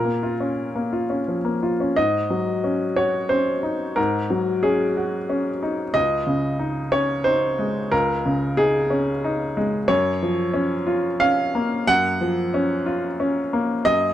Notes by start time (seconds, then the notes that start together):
Already playing: A#2 A#4
0.05 A#3
0.23 F4
0.40 C#4
0.75 A#3
0.93 F4
1.10 C#4
1.28 F3
1.45 A#3
1.63 F4
1.80 C#4
1.96 G#2 D#5
2.30 F#3
2.64 C#4
2.96 F#4 C#5
3.29 C#4 C5
3.63 D#4
3.96 G#2 A#4
4.30 F#3
4.63 C#4 G#4
4.97 F#4
5.29 C#4
5.63 D#4
5.94 C#2 D#5
6.27 C#3
6.59 D#4
6.92 C#4 C#5
7.24 D#4 C5
7.59 G#3
7.92 C#2 A#4
8.26 C#3
8.57 D#4 G#4
8.90 C#4
9.24 D#4
9.57 G#3
9.88 F#2 C#5
10.22 F3
10.54 C#4
10.87 F4
11.20 C#4 F5
11.55 A#3
11.87 F#2 F#5
12.21 F3
12.54 C#4
12.86 F4
13.20 C#4
13.53 A#3
13.85 F#2 D#5